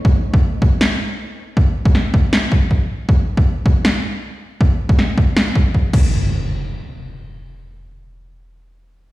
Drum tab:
CC |----------------|----------------|----------------|--------------x-|
SD |--------o-------|----o---o-------|--------o-------|----o---o-------|
BD |o--o--o---------|o--o--o---o-o---|o--o--o---------|o--o--o---o-o-o-|

CC |----------------|----------------|
SD |----------------|----------------|
BD |----------------|----------------|